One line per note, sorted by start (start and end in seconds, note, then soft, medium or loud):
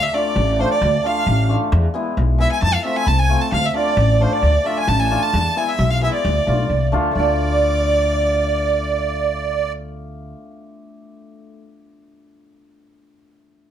0.03 0.16 E5 loud
0.03 0.15 E5 medium
0.13 0.25 A3 medium
0.13 0.26 D4 medium
0.13 0.26 F4 medium
0.13 0.62 D5 medium
0.13 0.57 D5 medium
0.36 0.63 A1 loud
0.59 0.70 A3 medium
0.59 0.71 D4 medium
0.59 0.71 F4 medium
0.59 0.71 C5 medium
0.71 1.06 D5 medium
0.71 1.08 D5 medium
0.82 0.95 D2 loud
1.03 1.15 A3 medium
1.03 1.16 D4 medium
1.03 1.16 F4 medium
1.03 1.47 F5 medium
1.03 1.50 F5 medium
1.27 1.54 A1 loud
1.48 1.60 A3 medium
1.48 1.61 D4 medium
1.48 1.61 F4 medium
1.72 1.86 E2 loud
1.94 2.37 G#3 medium
1.94 2.06 B3 medium
1.94 2.06 E4 medium
2.17 2.44 B1 loud
2.38 2.67 G#3 medium
2.38 2.51 B3 medium
2.38 2.51 E4 medium
2.38 2.51 E5 medium
2.38 2.51 E5 loud
2.51 2.61 G#5 medium
2.51 2.62 G#5 loud
2.62 2.76 F2 loud
2.62 2.85 A5 medium
2.62 2.75 A5 loud
2.74 2.84 F5 medium
2.84 2.96 A3 medium
2.84 2.96 C4 medium
2.84 2.96 F4 medium
2.84 3.04 E5 medium
2.84 2.98 E5 medium
2.96 3.09 G#5 loud
3.05 3.34 C2 loud
3.05 3.20 A5 loud
3.05 3.19 A5 medium
3.05 3.08 B5 medium
3.19 3.42 G#5 loud
3.29 3.41 A3 medium
3.29 3.41 C4 medium
3.29 3.41 F4 medium
3.41 3.52 A5 medium
3.41 3.53 A5 medium
3.52 3.66 D2 loud
3.52 3.64 F5 medium
3.52 3.67 F5 loud
3.65 3.75 E5 medium
3.65 3.76 E5 medium
3.74 3.86 A3 medium
3.74 3.86 D4 medium
3.74 3.87 F4 medium
3.74 4.22 D5 medium
3.74 4.23 D5 medium
3.97 4.24 A1 loud
4.20 4.31 A3 medium
4.20 4.32 D4 medium
4.20 4.32 F4 medium
4.20 4.34 C5 medium
4.20 4.31 C5 medium
4.33 4.68 D5 medium
4.33 4.78 D5 medium
4.42 4.56 D2 loud
4.64 4.76 A3 medium
4.64 4.77 D4 medium
4.64 4.77 F4 medium
4.64 4.79 E5 medium
4.78 4.90 G#5 loud
4.78 4.88 G#5 medium
4.88 5.15 A1 loud
4.88 5.21 A5 loud
4.88 5.01 A5 loud
4.99 5.24 G#5 loud
5.10 5.22 A3 medium
5.10 5.22 D4 medium
5.10 5.22 F4 medium
5.22 5.64 A5 medium
5.22 5.59 A5 loud
5.34 5.47 E2 loud
5.55 6.00 G#3 medium
5.55 5.67 B3 medium
5.55 5.68 E4 medium
5.55 5.70 G#5 medium
5.67 5.90 E5 medium
5.67 5.92 E5 medium
5.79 6.06 B1 loud
5.90 6.02 F5 medium
5.90 6.01 F5 medium
6.01 6.29 G#3 medium
6.01 6.13 B3 medium
6.01 6.13 E4 medium
6.01 6.13 E5 medium
6.12 6.88 D5 medium
6.25 6.38 D2 loud
6.46 6.67 B1 medium
6.46 6.58 A3 medium
6.46 6.58 D4 medium
6.46 6.58 F4 medium
6.70 6.90 C2 medium
6.92 7.13 D2 medium
6.92 7.03 A3 medium
6.92 7.03 D4 medium
6.92 7.04 F4 loud
7.11 11.55 A3 medium
7.11 10.88 D4 medium
7.11 9.72 D5 medium
7.11 9.73 D5 loud
7.16 10.32 D2 medium
7.16 10.55 F4 medium